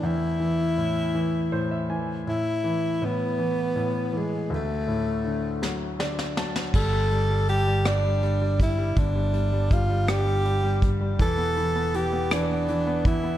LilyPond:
<<
  \new Staff \with { instrumentName = "Tenor saxophone" } { \time 6/8 \key d \dorian \tempo 4. = 54 e'2~ e'8 r8 | e'4 b4. gis8 | a2 r4 | \key g \mixolydian a'4 g'8 d'4 e'8 |
d'4 f'8 g'4 r8 | a'4 g'8 d'4 e'8 | }
  \new Staff \with { instrumentName = "Grand piano" } { \time 6/8 \key d \dorian r2 c''16 e''16 gis''8 | r2. | r2 d''8 a''8 | \key g \mixolydian r2. |
r2. | r2. | }
  \new Staff \with { instrumentName = "Grand piano" } { \clef bass \time 6/8 \key d \dorian <e, a, e>8 e8 a,8 e8 a,8 e8 | a,8 e8 a,8 e8 a,8 e8 | d,8 a,8 d8 fis8 d8 fis8 | \key g \mixolydian g16 g16 g16 g16 g16 g16 d'16 g16 g16 g16 g16 g16 |
d16 g16 g16 g16 g16 g16 d'16 g16 g16 g16 g16 g16 | e16 b16 e16 b16 e16 b16 e16 b16 e16 b16 e16 b16 | }
  \new Staff \with { instrumentName = "Fretless electric bass" } { \clef bass \time 6/8 \key d \dorian r2. | r2. | r2. | \key g \mixolydian g,,2. |
g,,2. | e,,2. | }
  \new DrumStaff \with { instrumentName = "Drums" } \drummode { \time 6/8 r4. r4. | r4. r4. | r4. sn8 sn16 sn16 sn16 sn16 | <cymc bd>8 hh8 hh8 <hh ss>8 hh8 <hh bd>8 |
<hh bd>8 hh8 <hh bd>8 <hh ss>8 hh8 <hh bd>8 | <hh bd>8 hh8 hh8 <hh ss>8 hh8 <hh bd>8 | }
>>